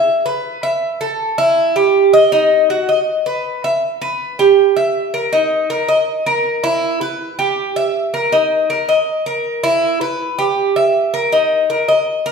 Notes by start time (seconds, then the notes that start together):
Already playing: E5
0.26 B4
0.63 E5
1.01 A4
1.38 E4
1.76 G4
2.13 D#5
2.32 D#4
2.70 F#4
2.89 D#5
3.26 B4
3.64 E5
4.02 B4
4.39 G4
4.76 E5
5.14 A#4
5.33 D#4
5.70 A#4
5.88 D#5
6.26 A#4
6.64 E4
7.01 B4
7.39 G4
7.76 E5
8.14 A#4
8.32 D#4
8.70 A#4
8.89 D#5
9.26 A#4
9.64 E4
10.01 B4
10.39 G4
10.76 E5
11.14 A#4
11.32 D#4
11.70 A#4
11.88 D#5
12.26 A#4